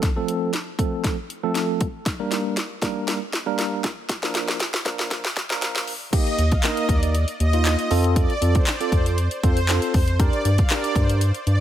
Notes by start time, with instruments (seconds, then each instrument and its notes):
0.03 kick, snare, closed hi-hat
0.16 tine electric piano F3 A3 C4 A4
0.28 closed hi-hat
0.53 snare, closed hi-hat
0.79 tine electric piano F3 A3 C4 A4, kick, closed hi-hat
1.04 kick, snare, closed hi-hat
1.30 closed hi-hat
1.43 tine electric piano F3 A3 C4 A4
1.55 snare, closed hi-hat
1.81 kick, closed hi-hat
2.06 kick, snare, closed hi-hat
2.19 tine electric piano G3 A#3 D4 A#4
2.31 snare, closed hi-hat
2.57 snare, closed hi-hat
2.82 tine electric piano G3 A#3 D4 A#4, kick, snare, closed hi-hat
3.08 snare, closed hi-hat
3.33 snare, closed hi-hat
3.46 tine electric piano G3 A#3 D4 A#4
3.59 snare, closed hi-hat
3.84 kick, snare, closed hi-hat
4.09 kick, snare, closed hi-hat
4.23 tine electric piano F3 A#3 D4 A#4, snare
4.35 snare, closed hi-hat
4.48 snare
4.60 snare, closed hi-hat
4.74 snare
4.85 tine electric piano F3 A#3 D4 A#4, kick, snare, closed hi-hat
4.99 snare
5.11 kick, snare, closed hi-hat
5.25 snare
5.37 kick, snare, closed hi-hat
5.50 tine electric piano F3 A#3 D4 A#4, snare
5.62 snare, closed hi-hat
5.76 snare
5.87 open hi-hat
6.13 tine electric piano A#3 D#4 G4, supersaw synth D#5, kick, closed hi-hat, crash
6.27 closed hi-hat
6.38 analog synth bass D#2, closed hi-hat
6.52 supersaw synth F5, kick, closed hi-hat
6.63 tine electric piano A#3 D#4 A#4, supersaw synth D#5, snare, clap, closed hi-hat
6.77 closed hi-hat
6.89 analog synth bass D#2, supersaw synth D5, kick, closed hi-hat
7.03 closed hi-hat
7.15 closed hi-hat
7.28 closed hi-hat
7.40 analog synth bass D#2, supersaw synth D#5, closed hi-hat
7.53 tine electric piano A#3 D#4 F4, closed hi-hat
7.65 snare, clap, closed hi-hat
7.79 closed hi-hat
7.91 analog synth bass F2, tine electric piano C4 F4 A4, open hi-hat
8.04 closed hi-hat
8.16 supersaw synth D5, kick, closed hi-hat
8.30 closed hi-hat
8.41 analog synth bass F2, tine electric piano C4 F4 A4, closed hi-hat
8.55 supersaw synth C5, kick, closed hi-hat
8.67 supersaw synth D5, snare, clap, closed hi-hat
8.80 tine electric piano C4 F4 A4, closed hi-hat
8.92 analog synth bass F2, supersaw synth C5, kick, closed hi-hat
9.06 closed hi-hat
9.18 closed hi-hat
9.31 closed hi-hat
9.43 analog synth bass F2, tine electric piano C4 F4 A4, supersaw synth C5, kick, closed hi-hat
9.57 closed hi-hat
9.69 tine electric piano C4 F4 A4, snare, clap, closed hi-hat
9.82 closed hi-hat
9.94 analog synth bass F2, supersaw synth C5, kick, open hi-hat
10.08 closed hi-hat
10.19 tine electric piano D4 G4 A#4, supersaw synth D5, kick, closed hi-hat
10.33 closed hi-hat
10.45 analog synth bass G2, closed hi-hat
10.58 supersaw synth F5, kick, closed hi-hat
10.70 tine electric piano D4 G4 A#4, supersaw synth D5, snare, clap, closed hi-hat
10.84 closed hi-hat
10.96 analog synth bass G2, supersaw synth C5, kick, closed hi-hat
11.09 closed hi-hat
11.21 closed hi-hat
11.34 closed hi-hat
11.47 analog synth bass G2, supersaw synth D5, closed hi-hat